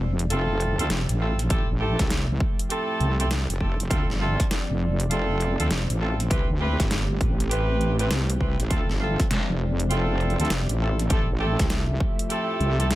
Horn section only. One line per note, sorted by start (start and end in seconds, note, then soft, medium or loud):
0.30 0.75 C4 medium
0.30 0.75 E4 medium
0.30 0.75 F4 medium
0.30 0.75 A4 loud
0.79 0.90 C4 loud
0.79 0.90 E4 medium
0.79 0.90 F4 medium
0.79 0.90 A4 loud
1.20 1.38 C4 medium
1.20 1.38 E4 medium
1.20 1.38 F4 medium
1.20 1.38 A4 medium
1.50 1.68 C4 loud
1.50 1.68 E4 loud
1.50 1.68 G4 loud
1.50 1.68 A4 loud
1.80 2.05 C4 medium
1.80 2.05 E4 medium
1.80 2.05 G4 medium
1.80 2.05 A4 loud
2.70 3.15 C4 medium
2.70 3.15 E4 medium
2.70 3.15 G4 medium
2.70 3.15 A4 loud
3.19 3.30 C4 medium
3.19 3.30 E4 medium
3.19 3.30 G4 medium
3.19 3.30 A4 loud
3.60 3.79 C4 medium
3.60 3.78 E4 medium
3.60 3.78 G4 medium
3.60 3.79 A4 medium
3.90 4.08 C4 loud
3.90 4.08 E4 medium
3.90 4.09 F4 medium
3.90 4.08 A4 loud
4.20 4.45 C4 loud
4.20 4.45 E4 medium
4.20 4.45 F4 medium
4.20 4.45 A4 loud
5.10 5.55 C4 loud
5.10 5.55 E4 medium
5.10 5.55 F4 medium
5.10 5.55 A4 loud
5.59 5.70 C4 medium
5.59 5.70 E4 medium
5.59 5.70 F4 medium
5.59 5.70 A4 loud
6.00 6.18 C4 medium
6.00 6.18 E4 medium
6.00 6.19 F4 medium
6.00 6.18 A4 medium
6.30 6.49 C4 loud
6.30 6.49 E4 loud
6.30 6.49 G4 medium
6.30 6.49 B4 loud
6.60 6.85 C4 medium
6.60 6.85 E4 medium
6.60 6.85 G4 medium
6.60 6.85 B4 loud
7.50 7.95 C4 medium
7.50 7.95 E4 medium
7.50 7.95 G4 medium
7.50 7.95 B4 loud
7.99 8.10 C4 loud
7.99 8.10 E4 medium
7.99 8.10 G4 medium
7.99 8.10 B4 loud
8.40 8.58 C4 medium
8.40 8.58 E4 medium
8.40 8.58 G4 medium
8.40 8.58 B4 medium
8.70 8.88 C4 loud
8.70 8.88 E4 loud
8.70 8.88 F4 loud
8.70 8.88 A4 loud
9.00 9.25 C4 medium
9.00 9.25 E4 medium
9.00 9.25 F4 medium
9.00 9.25 A4 loud
9.90 10.35 C4 medium
9.90 10.35 E4 medium
9.90 10.35 F4 medium
9.90 10.35 A4 loud
10.39 10.50 C4 loud
10.39 10.50 E4 medium
10.39 10.50 F4 medium
10.39 10.50 A4 loud
10.80 10.98 C4 medium
10.80 10.98 E4 medium
10.80 10.98 F4 medium
10.80 10.98 A4 medium
11.10 11.28 C4 loud
11.10 11.28 E4 loud
11.10 11.28 G4 loud
11.10 11.28 A4 loud
11.40 11.65 C4 loud
11.40 11.65 E4 medium
11.40 11.65 G4 medium
11.40 11.65 A4 loud
12.30 12.75 C4 loud
12.30 12.75 E4 medium
12.30 12.75 G4 medium
12.30 12.75 A4 loud
12.79 12.90 C4 medium
12.79 12.90 E4 medium
12.79 12.90 G4 medium
12.79 12.90 A4 loud